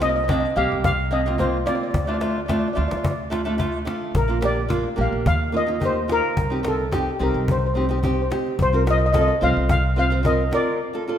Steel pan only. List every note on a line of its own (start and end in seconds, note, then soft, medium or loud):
0.02 0.08 D#5 medium
0.10 0.15 D#5 medium
0.16 0.23 D#5 medium
0.24 0.31 D#5 medium
0.32 0.39 D#5 medium
0.40 0.47 D#5 medium
0.57 0.84 F5 medium
0.85 0.97 F5 loud
1.13 1.38 D#5 medium
1.40 1.68 C5 medium
1.67 1.74 D5 medium
1.75 1.82 D5 medium
1.83 1.89 D5 medium
1.91 1.95 D5 medium
1.96 2.04 D5 medium
2.05 2.12 D5 soft
2.14 2.20 D5 medium
2.22 2.28 D5 soft
2.30 2.36 D5 soft
2.38 2.43 D5 soft
2.46 2.50 D5 medium
2.51 2.58 D5 soft
2.59 2.66 D5 medium
2.68 2.72 D5 soft
2.73 2.80 D5 medium
2.82 2.87 D5 soft
2.88 2.95 D5 medium
2.97 3.02 D5 medium
3.04 3.10 D5 medium
3.11 3.18 D5 medium
4.16 4.44 A#4 medium
4.45 5.01 D5 medium
5.01 5.26 F5 medium
5.27 5.55 F5 medium
5.57 5.84 D#5 medium
5.85 6.12 C5 medium
6.12 6.62 A#4 loud
6.68 6.95 A4 medium
6.95 7.19 G4 medium
7.23 7.35 A#4 medium
7.51 7.57 C5 medium
7.58 7.64 C5 medium
7.66 7.72 C5 medium
7.74 7.79 C5 soft
7.81 7.87 C5 medium
7.90 7.95 C5 soft
7.98 8.03 C5 soft
8.06 8.11 C5 soft
8.13 8.19 C5 medium
8.22 8.26 C5 medium
8.62 8.89 C5 medium
8.90 8.96 D#5 loud
8.98 9.04 D#5 medium
9.06 9.11 D#5 medium
9.13 9.19 D#5 medium
9.21 9.27 D#5 medium
9.28 9.34 D#5 medium
9.43 9.69 F5 medium
9.71 9.98 F5 loud
9.99 10.27 F5 loud
10.26 10.38 D#5 medium
10.55 11.18 D5 loud